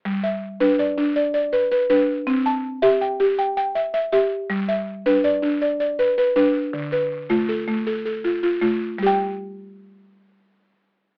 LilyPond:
\new Staff \with { instrumentName = "Marimba" } { \time 12/8 \key g \mixolydian \tempo 4. = 107 << { r8 e''4 b'8 d''4 d''8 d''4 b'8 b'4~ | b'8 a''4 e''8 g''4 g''8 g''4 e''8 e''4~ | e''8 e''4 b'8 d''4 d''8 d''4 b'8 b'4~ | b'8 b'4 f'8 a'4 a'8 a'4 f'8 f'4~ |
f'8 r1 r4. | } \\ { g4 r8 d'4 d'4 r8 b'4 d'4 | c'4 r8 g'4 g'4 r8 e''4 g'4 | g4 r8 d'4 d'4 r8 b'4 d'4 | d4 r8 a4 a4 r8 f'4 a4 |
<g g' g''>1. | } >> }